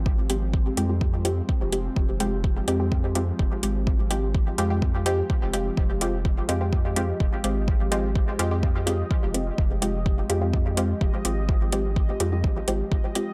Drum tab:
HH |-x-x-x-x|-x-x-x-x|-x-x-x-x|-x-x-x-x|
BD |o-o-o-o-|o-o-o-o-|o-o-o-o-|o-o-o-o-|

HH |-x-x-x-x|-x-x-x-x|-x-x-x-x|
BD |o-o-o-o-|o-o-o-o-|o-o-o-o-|